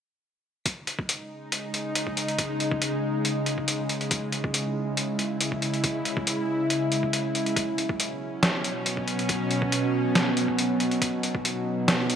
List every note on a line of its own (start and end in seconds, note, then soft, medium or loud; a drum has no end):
0.65 7.52 C#3 medium
0.65 7.52 G#3 medium
0.65 4.08 D#4 medium
0.65 kick loud
0.65 closed hi-hat medium
0.87 closed hi-hat medium
0.99 kick loud
1.09 closed hi-hat medium
1.52 closed hi-hat medium
1.74 closed hi-hat medium
1.95 closed hi-hat medium
2.07 kick medium
2.17 closed hi-hat medium
2.28 closed hi-hat soft
2.39 kick loud
2.39 closed hi-hat medium
2.60 closed hi-hat medium
2.71 kick loud
2.82 closed hi-hat medium
3.25 closed hi-hat medium
3.46 closed hi-hat medium
3.58 kick medium
3.68 closed hi-hat medium
3.89 closed hi-hat medium
4.01 closed hi-hat soft
4.11 7.53 E4 medium
4.11 kick loud
4.11 closed hi-hat medium
4.32 closed hi-hat soft
4.44 kick loud
4.54 closed hi-hat medium
4.97 closed hi-hat medium
5.19 closed hi-hat soft
5.41 closed hi-hat medium
5.52 kick medium
5.62 closed hi-hat soft
5.74 closed hi-hat soft
5.84 kick loud
5.84 closed hi-hat medium
6.05 closed hi-hat soft
6.17 kick loud
6.27 closed hi-hat medium
6.70 closed hi-hat medium
6.92 closed hi-hat soft
7.03 kick medium
7.13 closed hi-hat medium
7.35 closed hi-hat soft
7.46 closed hi-hat soft
7.56 12.16 B2 medium
7.56 12.16 F#3 medium
7.56 10.98 C#4 medium
7.56 kick loud
7.56 closed hi-hat medium
7.78 closed hi-hat medium
7.89 kick loud
8.00 closed hi-hat medium
8.43 snare loud
8.43 closed hi-hat medium
8.64 closed hi-hat soft
8.86 closed hi-hat medium
8.97 kick medium
9.08 closed hi-hat soft
9.19 closed hi-hat soft
9.29 kick loud
9.29 closed hi-hat medium
9.51 closed hi-hat soft
9.62 kick loud
9.72 closed hi-hat medium
10.15 snare loud
10.15 closed hi-hat medium
10.37 closed hi-hat soft
10.48 kick medium
10.59 closed hi-hat medium
10.80 closed hi-hat medium
10.91 closed hi-hat soft
11.01 12.16 D#4 medium
11.01 kick loud
11.01 closed hi-hat medium
11.23 closed hi-hat medium
11.35 kick loud
11.45 closed hi-hat medium
11.88 snare loud
11.88 closed hi-hat medium
12.10 closed hi-hat medium